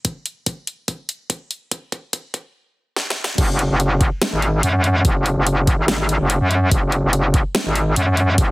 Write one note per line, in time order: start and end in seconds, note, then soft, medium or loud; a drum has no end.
0.05 kick loud
0.05 closed hi-hat medium
0.26 closed hi-hat medium
0.46 kick loud
0.46 closed hi-hat medium
0.67 closed hi-hat medium
0.88 kick loud
0.88 closed hi-hat medium
1.09 closed hi-hat medium
1.30 kick loud
1.30 closed hi-hat medium
1.51 closed hi-hat medium
1.71 kick loud
1.71 closed hi-hat medium
1.92 kick loud
1.92 closed hi-hat medium
2.13 kick loud
2.13 closed hi-hat medium
2.34 kick loud
2.34 closed hi-hat medium
2.96 snare medium
3.10 snare medium
3.24 snare medium
3.38 3.68 F#1 medium
3.38 kick loud
3.38 closed hi-hat medium
3.38 crash loud
3.59 closed hi-hat medium
3.70 4.10 F#1 loud
3.80 closed hi-hat medium
4.01 kick loud
4.01 closed hi-hat medium
4.22 snare loud
4.22 closed hi-hat medium
4.32 4.62 G#1 loud
4.42 closed hi-hat medium
4.63 5.03 F#2 loud
4.63 closed hi-hat medium
4.84 closed hi-hat medium
5.05 5.35 F#1 medium
5.05 kick loud
5.05 closed hi-hat medium
5.26 closed hi-hat medium
5.37 5.77 F#1 medium
5.47 closed hi-hat medium
5.67 kick loud
5.67 closed hi-hat medium
5.78 6.18 G#1 loud
5.88 snare loud
5.88 closed hi-hat medium
6.09 closed hi-hat medium
6.20 6.39 F#1 loud
6.30 closed hi-hat medium
6.41 6.70 F#2 loud
6.51 closed hi-hat medium
6.71 7.02 F#1 loud
6.71 kick loud
6.71 closed hi-hat medium
6.92 closed hi-hat medium
7.03 7.43 F#1 loud
7.13 closed hi-hat medium
7.34 kick loud
7.34 closed hi-hat medium
7.55 snare loud
7.55 closed hi-hat medium
7.66 7.95 G#1 loud
7.75 closed hi-hat medium
7.96 8.37 F#2 medium
7.96 closed hi-hat medium
8.17 closed hi-hat medium
8.38 8.51 F#1 loud
8.38 kick loud
8.38 closed hi-hat medium